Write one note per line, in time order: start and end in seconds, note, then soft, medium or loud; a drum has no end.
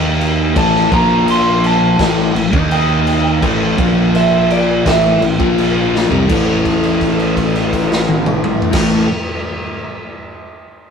0.00 0.52 D#2 loud
0.00 0.55 D#3 loud
0.00 0.55 A#3 loud
0.00 0.55 D#4 loud
0.21 crash medium
0.56 0.89 A1 medium
0.56 0.90 A2 loud
0.56 0.91 E3 loud
0.56 0.91 A3 loud
0.56 0.92 A5 loud
0.56 kick loud
0.56 crash medium
0.75 snare soft
0.91 1.95 A#1 medium
0.91 1.98 A#2 medium
0.91 1.98 F3 loud
0.91 1.98 A#3 loud
0.91 1.28 A#5 loud
0.91 kick loud
0.91 crash medium
1.28 1.64 C6 loud
1.28 crash medium
1.64 2.34 A5 loud
1.64 crash medium
1.99 2.32 A1 loud
1.99 2.34 A2 loud
1.99 2.34 E3 loud
1.99 2.34 A3 loud
1.99 kick loud
1.99 snare loud
1.99 crash medium
2.35 2.52 A1 medium
2.35 2.52 A2 medium
2.35 2.53 E3 medium
2.35 crash medium
2.52 3.39 D#2 loud
2.52 3.41 D#3 loud
2.52 3.41 A#3 medium
2.52 3.42 D#4 loud
2.52 kick loud
2.71 4.11 G5 loud
2.71 crash medium
3.07 crash medium
3.42 3.76 A1 loud
3.42 3.77 A2 loud
3.42 3.78 E3 loud
3.42 3.78 A3 loud
3.42 kick loud
3.42 crash medium
3.78 4.82 A#1 loud
3.78 4.85 A#2 medium
3.78 4.85 F3 loud
3.78 4.85 A#3 loud
3.78 kick loud
3.78 crash medium
4.15 4.50 E5 medium
4.15 crash medium
4.50 4.86 D5 medium
4.50 crash medium
4.85 5.19 A1 loud
4.85 5.20 A2 medium
4.85 5.20 E3 loud
4.85 5.21 A3 loud
4.85 5.22 E5 loud
4.85 kick loud
4.85 snare loud
4.85 crash medium
5.20 5.38 A1 medium
5.20 5.38 A2 medium
5.20 5.39 E3 medium
5.20 crash medium
5.39 6.08 A#1 medium
5.39 6.10 A#2 medium
5.39 6.10 F3 medium
5.39 6.11 A#3 loud
5.39 kick loud
5.58 crash medium
5.95 snare medium
6.10 6.28 C2 loud
6.10 6.27 C3 loud
6.10 6.28 G3 loud
6.10 floor tom loud
6.27 8.61 A1 medium
6.27 8.71 A2 loud
6.27 8.74 E3 loud
6.27 8.75 A3 loud
6.27 kick loud
6.27 crash medium
6.65 kick medium
6.65 crash soft
6.83 crash soft
7.01 kick medium
7.01 crash soft
7.19 crash soft
7.37 kick medium
7.37 crash soft
7.56 crash medium
7.73 kick medium
7.73 crash medium
7.92 snare loud
8.09 high tom loud
8.26 mid tom loud
8.44 mid tom loud
8.62 floor tom loud
8.71 9.04 A1 medium
8.71 9.05 A2 loud
8.71 9.06 E3 loud
8.71 kick loud
8.71 snare loud
8.71 crash loud
8.76 9.07 A3 loud